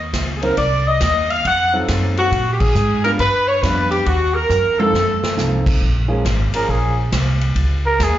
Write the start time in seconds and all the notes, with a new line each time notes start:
Already playing: D#2
0.13 C#2, kick, snare, hi-hat pedal, ride
0.36 G#4
0.42 F#3 A#3 C4 D#4 A#4 C5, ride
0.56 C2 D5, kick, ride
0.86 D#5
1.00 D#2, kick, snare, hi-hat pedal, ride
1.30 F5, ride
1.45 F2 F#5, kick, ride
1.73 F#3 C4 D#4 F4 A4
1.88 F#2, kick, snare, hi-hat pedal, ride
2.17 F#4, ride
2.32 A#2, kick, ride
2.52 G4
2.59 G#4, kick, crash
2.75 G#2, hi-hat pedal
3.02 G3 B3 D4 F4 A#4 B4, ride
3.19 G2 B4, kick, ride
3.47 C#5
3.61 F2 G3 B3 D4 F4 B4, kick, snare, hi-hat pedal, ride
3.90 G4, ride
4.06 D#2 F#4, kick, ride
4.33 A#4
4.49 F#2, floor tom, hi-hat pedal
4.78 F3 A3 C4 D#4 A4, high tom
4.94 F2, snare
5.23 muted upright bass stroke, snare
5.37 C2 F3 A3 C4 D#4 A4, snare, hi-hat pedal
5.66 kick, crash
5.81 A#1, kick
6.08 F3 G#3 A#3 C#4 G#4
6.25 G#1, kick, snare, hi-hat pedal, ride
6.53 F3 A#3 C#4 G#4 A#4, muted upright bass stroke, ride
6.69 A#1 G#4, kick
7.12 C2, kick, snare, hi-hat pedal, ride
7.41 ride
7.55 C#2, kick, ride
7.86 A#4
7.99 D#2, kick, snare, hi-hat pedal, ride
8.04 G#4